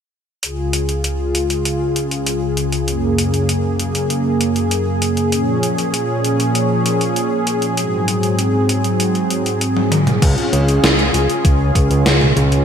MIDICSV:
0, 0, Header, 1, 4, 480
1, 0, Start_track
1, 0, Key_signature, -5, "major"
1, 0, Tempo, 612245
1, 336, Time_signature, 4, 2, 24, 8
1, 9914, End_track
2, 0, Start_track
2, 0, Title_t, "Analog synth pad"
2, 0, Program_c, 0, 89
2, 336, Note_on_c, 0, 37, 73
2, 336, Note_on_c, 0, 49, 67
2, 336, Note_on_c, 0, 65, 69
2, 336, Note_on_c, 0, 68, 78
2, 2236, Note_off_c, 0, 37, 0
2, 2236, Note_off_c, 0, 65, 0
2, 2256, Note_on_c, 0, 42, 78
2, 2256, Note_on_c, 0, 58, 69
2, 4144, Note_off_c, 0, 49, 0
2, 4156, Note_off_c, 0, 42, 0
2, 4156, Note_off_c, 0, 58, 0
2, 4176, Note_on_c, 0, 46, 78
2, 4176, Note_on_c, 0, 53, 71
2, 4177, Note_on_c, 0, 61, 67
2, 6076, Note_off_c, 0, 46, 0
2, 6076, Note_off_c, 0, 53, 0
2, 6077, Note_off_c, 0, 61, 0
2, 6093, Note_on_c, 0, 54, 73
2, 6094, Note_on_c, 0, 60, 70
2, 6095, Note_on_c, 0, 44, 73
2, 7984, Note_off_c, 0, 68, 0
2, 7995, Note_off_c, 0, 54, 0
2, 7995, Note_off_c, 0, 60, 0
2, 7996, Note_off_c, 0, 44, 0
2, 8017, Note_on_c, 0, 49, 75
2, 8017, Note_on_c, 0, 61, 69
2, 8017, Note_on_c, 0, 65, 72
2, 8017, Note_on_c, 0, 68, 87
2, 9914, Note_off_c, 0, 49, 0
2, 9914, Note_off_c, 0, 61, 0
2, 9914, Note_off_c, 0, 65, 0
2, 9914, Note_off_c, 0, 68, 0
2, 9914, End_track
3, 0, Start_track
3, 0, Title_t, "Analog synth bass"
3, 0, Program_c, 1, 38
3, 8014, Note_on_c, 1, 37, 94
3, 8120, Note_off_c, 1, 37, 0
3, 8254, Note_on_c, 1, 37, 89
3, 8466, Note_off_c, 1, 37, 0
3, 8494, Note_on_c, 1, 37, 83
3, 8706, Note_off_c, 1, 37, 0
3, 8734, Note_on_c, 1, 37, 82
3, 8840, Note_off_c, 1, 37, 0
3, 8975, Note_on_c, 1, 37, 91
3, 9186, Note_off_c, 1, 37, 0
3, 9215, Note_on_c, 1, 37, 80
3, 9321, Note_off_c, 1, 37, 0
3, 9333, Note_on_c, 1, 37, 80
3, 9440, Note_off_c, 1, 37, 0
3, 9454, Note_on_c, 1, 37, 87
3, 9666, Note_off_c, 1, 37, 0
3, 9695, Note_on_c, 1, 37, 82
3, 9906, Note_off_c, 1, 37, 0
3, 9914, End_track
4, 0, Start_track
4, 0, Title_t, "Drums"
4, 336, Note_on_c, 9, 42, 76
4, 415, Note_off_c, 9, 42, 0
4, 575, Note_on_c, 9, 42, 76
4, 653, Note_off_c, 9, 42, 0
4, 696, Note_on_c, 9, 42, 51
4, 775, Note_off_c, 9, 42, 0
4, 817, Note_on_c, 9, 42, 70
4, 895, Note_off_c, 9, 42, 0
4, 1057, Note_on_c, 9, 42, 70
4, 1135, Note_off_c, 9, 42, 0
4, 1177, Note_on_c, 9, 42, 51
4, 1255, Note_off_c, 9, 42, 0
4, 1297, Note_on_c, 9, 42, 69
4, 1375, Note_off_c, 9, 42, 0
4, 1537, Note_on_c, 9, 42, 73
4, 1615, Note_off_c, 9, 42, 0
4, 1657, Note_on_c, 9, 42, 49
4, 1736, Note_off_c, 9, 42, 0
4, 1776, Note_on_c, 9, 42, 77
4, 1854, Note_off_c, 9, 42, 0
4, 2016, Note_on_c, 9, 42, 72
4, 2094, Note_off_c, 9, 42, 0
4, 2136, Note_on_c, 9, 42, 48
4, 2214, Note_off_c, 9, 42, 0
4, 2257, Note_on_c, 9, 42, 73
4, 2335, Note_off_c, 9, 42, 0
4, 2497, Note_on_c, 9, 42, 74
4, 2575, Note_off_c, 9, 42, 0
4, 2617, Note_on_c, 9, 42, 49
4, 2695, Note_off_c, 9, 42, 0
4, 2736, Note_on_c, 9, 42, 76
4, 2815, Note_off_c, 9, 42, 0
4, 2976, Note_on_c, 9, 42, 71
4, 3054, Note_off_c, 9, 42, 0
4, 3096, Note_on_c, 9, 42, 54
4, 3174, Note_off_c, 9, 42, 0
4, 3216, Note_on_c, 9, 42, 72
4, 3294, Note_off_c, 9, 42, 0
4, 3455, Note_on_c, 9, 42, 73
4, 3533, Note_off_c, 9, 42, 0
4, 3574, Note_on_c, 9, 42, 49
4, 3652, Note_off_c, 9, 42, 0
4, 3694, Note_on_c, 9, 42, 77
4, 3773, Note_off_c, 9, 42, 0
4, 3934, Note_on_c, 9, 42, 72
4, 4013, Note_off_c, 9, 42, 0
4, 4054, Note_on_c, 9, 42, 51
4, 4133, Note_off_c, 9, 42, 0
4, 4173, Note_on_c, 9, 42, 76
4, 4252, Note_off_c, 9, 42, 0
4, 4415, Note_on_c, 9, 42, 76
4, 4493, Note_off_c, 9, 42, 0
4, 4535, Note_on_c, 9, 42, 47
4, 4613, Note_off_c, 9, 42, 0
4, 4655, Note_on_c, 9, 42, 73
4, 4733, Note_off_c, 9, 42, 0
4, 4896, Note_on_c, 9, 42, 68
4, 4975, Note_off_c, 9, 42, 0
4, 5016, Note_on_c, 9, 42, 49
4, 5094, Note_off_c, 9, 42, 0
4, 5136, Note_on_c, 9, 42, 73
4, 5214, Note_off_c, 9, 42, 0
4, 5376, Note_on_c, 9, 42, 76
4, 5454, Note_off_c, 9, 42, 0
4, 5496, Note_on_c, 9, 42, 49
4, 5574, Note_off_c, 9, 42, 0
4, 5616, Note_on_c, 9, 42, 71
4, 5694, Note_off_c, 9, 42, 0
4, 5855, Note_on_c, 9, 42, 68
4, 5934, Note_off_c, 9, 42, 0
4, 5974, Note_on_c, 9, 42, 49
4, 6053, Note_off_c, 9, 42, 0
4, 6095, Note_on_c, 9, 42, 72
4, 6173, Note_off_c, 9, 42, 0
4, 6334, Note_on_c, 9, 42, 73
4, 6413, Note_off_c, 9, 42, 0
4, 6454, Note_on_c, 9, 42, 50
4, 6532, Note_off_c, 9, 42, 0
4, 6574, Note_on_c, 9, 42, 69
4, 6653, Note_off_c, 9, 42, 0
4, 6814, Note_on_c, 9, 42, 71
4, 6893, Note_off_c, 9, 42, 0
4, 6934, Note_on_c, 9, 42, 51
4, 7012, Note_off_c, 9, 42, 0
4, 7055, Note_on_c, 9, 42, 69
4, 7133, Note_off_c, 9, 42, 0
4, 7174, Note_on_c, 9, 42, 32
4, 7253, Note_off_c, 9, 42, 0
4, 7295, Note_on_c, 9, 42, 72
4, 7373, Note_off_c, 9, 42, 0
4, 7417, Note_on_c, 9, 42, 48
4, 7495, Note_off_c, 9, 42, 0
4, 7536, Note_on_c, 9, 42, 73
4, 7615, Note_off_c, 9, 42, 0
4, 7656, Note_on_c, 9, 48, 49
4, 7735, Note_off_c, 9, 48, 0
4, 7775, Note_on_c, 9, 42, 71
4, 7775, Note_on_c, 9, 47, 73
4, 7854, Note_off_c, 9, 42, 0
4, 7854, Note_off_c, 9, 47, 0
4, 7895, Note_on_c, 9, 42, 47
4, 7895, Note_on_c, 9, 45, 71
4, 7973, Note_off_c, 9, 42, 0
4, 7973, Note_off_c, 9, 45, 0
4, 8015, Note_on_c, 9, 36, 113
4, 8015, Note_on_c, 9, 42, 82
4, 8015, Note_on_c, 9, 49, 87
4, 8093, Note_off_c, 9, 36, 0
4, 8093, Note_off_c, 9, 42, 0
4, 8093, Note_off_c, 9, 49, 0
4, 8136, Note_on_c, 9, 42, 35
4, 8215, Note_off_c, 9, 42, 0
4, 8256, Note_on_c, 9, 42, 83
4, 8334, Note_off_c, 9, 42, 0
4, 8377, Note_on_c, 9, 42, 55
4, 8455, Note_off_c, 9, 42, 0
4, 8496, Note_on_c, 9, 38, 112
4, 8496, Note_on_c, 9, 42, 80
4, 8575, Note_off_c, 9, 38, 0
4, 8575, Note_off_c, 9, 42, 0
4, 8616, Note_on_c, 9, 42, 37
4, 8694, Note_off_c, 9, 42, 0
4, 8735, Note_on_c, 9, 42, 73
4, 8814, Note_off_c, 9, 42, 0
4, 8856, Note_on_c, 9, 42, 55
4, 8934, Note_off_c, 9, 42, 0
4, 8975, Note_on_c, 9, 36, 115
4, 8976, Note_on_c, 9, 42, 76
4, 9053, Note_off_c, 9, 36, 0
4, 9054, Note_off_c, 9, 42, 0
4, 9215, Note_on_c, 9, 36, 97
4, 9216, Note_on_c, 9, 42, 80
4, 9293, Note_off_c, 9, 36, 0
4, 9295, Note_off_c, 9, 42, 0
4, 9335, Note_on_c, 9, 42, 50
4, 9413, Note_off_c, 9, 42, 0
4, 9455, Note_on_c, 9, 38, 108
4, 9455, Note_on_c, 9, 42, 82
4, 9533, Note_off_c, 9, 38, 0
4, 9533, Note_off_c, 9, 42, 0
4, 9576, Note_on_c, 9, 45, 84
4, 9654, Note_off_c, 9, 45, 0
4, 9695, Note_on_c, 9, 42, 76
4, 9774, Note_off_c, 9, 42, 0
4, 9816, Note_on_c, 9, 42, 54
4, 9894, Note_off_c, 9, 42, 0
4, 9914, End_track
0, 0, End_of_file